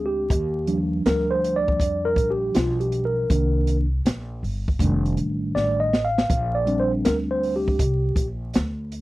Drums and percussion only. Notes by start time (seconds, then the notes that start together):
0.30 kick, closed hi-hat
0.67 closed hi-hat
1.06 snare, closed hi-hat
1.44 closed hi-hat
1.68 kick
1.80 kick, closed hi-hat
2.16 kick, closed hi-hat
2.54 snare, closed hi-hat
2.81 closed hi-hat
2.92 closed hi-hat
3.30 kick, closed hi-hat
3.67 closed hi-hat
4.06 snare, closed hi-hat
4.44 open hi-hat
4.68 kick
4.79 kick, closed hi-hat
5.06 closed hi-hat
5.17 closed hi-hat
5.56 snare
5.93 snare
6.18 snare
6.30 kick, closed hi-hat
6.67 closed hi-hat
7.05 snare, closed hi-hat
7.43 open hi-hat
7.68 kick
7.79 kick, closed hi-hat
8.16 kick, closed hi-hat
8.54 snare, closed hi-hat
8.92 closed hi-hat